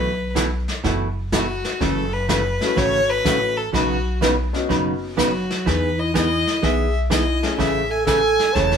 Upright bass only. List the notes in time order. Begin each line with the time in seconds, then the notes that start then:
Already playing: B1
0.84 F#1
1.81 F#1
2.77 G#1
3.25 A1
3.74 B1
4.70 F#1
5.67 E2
6.63 B1
7.59 A1
8.55 E1